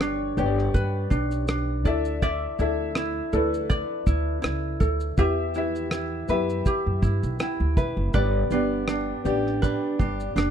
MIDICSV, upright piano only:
0, 0, Header, 1, 2, 480
1, 0, Start_track
1, 0, Tempo, 739827
1, 1442, Time_signature, 4, 2, 24, 8
1, 6816, End_track
2, 0, Start_track
2, 0, Title_t, "Upright piano"
2, 0, Program_c, 0, 0
2, 0, Control_c, 0, 64, 127
2, 0, Note_on_c, 0, 59, 71
2, 0, Note_on_c, 0, 62, 68
2, 0, Note_on_c, 0, 67, 66
2, 0, Note_on_c, 0, 73, 87
2, 0, Note_on_c, 0, 74, 80
2, 103, Note_off_c, 0, 59, 0
2, 106, Note_off_c, 0, 62, 0
2, 107, Note_off_c, 0, 67, 0
2, 110, Note_off_c, 0, 73, 0
2, 239, Note_on_c, 0, 59, 75
2, 242, Note_on_c, 0, 62, 72
2, 248, Note_on_c, 0, 67, 68
2, 254, Note_on_c, 0, 73, 68
2, 295, Note_off_c, 0, 73, 0
2, 298, Note_off_c, 0, 74, 0
2, 298, Note_on_c, 0, 74, 88
2, 910, Note_off_c, 0, 59, 0
2, 912, Note_off_c, 0, 62, 0
2, 915, Note_off_c, 0, 67, 0
2, 940, Note_off_c, 0, 74, 0
2, 1196, Note_on_c, 0, 62, 78
2, 1204, Note_on_c, 0, 64, 74
2, 1208, Note_on_c, 0, 69, 68
2, 1212, Control_c, 0, 64, 0
2, 1214, Note_on_c, 0, 76, 86
2, 1326, Control_c, 0, 64, 127
2, 1593, Note_off_c, 0, 62, 0
2, 1597, Note_off_c, 0, 64, 0
2, 1599, Note_off_c, 0, 69, 0
2, 1602, Note_off_c, 0, 76, 0
2, 1685, Note_on_c, 0, 62, 74
2, 1687, Note_on_c, 0, 64, 68
2, 1693, Note_on_c, 0, 69, 70
2, 1698, Note_on_c, 0, 76, 84
2, 2025, Note_off_c, 0, 62, 0
2, 2026, Note_off_c, 0, 64, 0
2, 2029, Note_off_c, 0, 69, 0
2, 2031, Note_off_c, 0, 76, 0
2, 2163, Note_on_c, 0, 62, 74
2, 2165, Note_on_c, 0, 64, 72
2, 2169, Note_on_c, 0, 69, 70
2, 2175, Note_on_c, 0, 71, 83
2, 2832, Note_off_c, 0, 62, 0
2, 2833, Note_off_c, 0, 64, 0
2, 2835, Note_off_c, 0, 69, 0
2, 2839, Note_off_c, 0, 71, 0
2, 3355, Note_on_c, 0, 59, 71
2, 3361, Note_on_c, 0, 64, 67
2, 3362, Note_on_c, 0, 67, 71
2, 3366, Note_on_c, 0, 76, 81
2, 3372, Control_c, 0, 64, 0
2, 3468, Control_c, 0, 64, 127
2, 3532, Note_off_c, 0, 59, 0
2, 3535, Note_off_c, 0, 64, 0
2, 3536, Note_off_c, 0, 67, 0
2, 3538, Note_off_c, 0, 76, 0
2, 3605, Note_on_c, 0, 59, 74
2, 3610, Note_on_c, 0, 64, 67
2, 3611, Note_on_c, 0, 67, 67
2, 3618, Note_on_c, 0, 76, 84
2, 3945, Note_off_c, 0, 59, 0
2, 3947, Note_off_c, 0, 64, 0
2, 3948, Note_off_c, 0, 67, 0
2, 3952, Note_off_c, 0, 76, 0
2, 4076, Note_on_c, 0, 59, 76
2, 4082, Note_on_c, 0, 64, 69
2, 4088, Note_on_c, 0, 67, 73
2, 4089, Note_on_c, 0, 76, 83
2, 4749, Note_off_c, 0, 59, 0
2, 4752, Note_off_c, 0, 64, 0
2, 4756, Note_off_c, 0, 67, 0
2, 4756, Note_off_c, 0, 76, 0
2, 4805, Note_on_c, 0, 79, 68
2, 5028, Note_off_c, 0, 79, 0
2, 5040, Note_on_c, 0, 76, 58
2, 5265, Note_off_c, 0, 76, 0
2, 5277, Note_on_c, 0, 59, 72
2, 5281, Note_on_c, 0, 62, 66
2, 5287, Note_on_c, 0, 67, 63
2, 5290, Note_on_c, 0, 74, 77
2, 5293, Control_c, 0, 64, 0
2, 5396, Control_c, 0, 64, 127
2, 5454, Note_off_c, 0, 59, 0
2, 5456, Note_off_c, 0, 62, 0
2, 5459, Note_off_c, 0, 67, 0
2, 5461, Note_off_c, 0, 74, 0
2, 5526, Note_on_c, 0, 59, 75
2, 5530, Note_on_c, 0, 62, 69
2, 5532, Note_on_c, 0, 67, 71
2, 5537, Note_on_c, 0, 74, 82
2, 5867, Note_off_c, 0, 59, 0
2, 5869, Note_off_c, 0, 62, 0
2, 5870, Note_off_c, 0, 67, 0
2, 5872, Note_off_c, 0, 74, 0
2, 5996, Note_on_c, 0, 59, 74
2, 6001, Note_on_c, 0, 62, 68
2, 6007, Note_on_c, 0, 67, 69
2, 6010, Note_on_c, 0, 74, 86
2, 6671, Note_off_c, 0, 59, 0
2, 6674, Note_off_c, 0, 62, 0
2, 6677, Note_off_c, 0, 67, 0
2, 6678, Note_off_c, 0, 74, 0
2, 6816, End_track
0, 0, End_of_file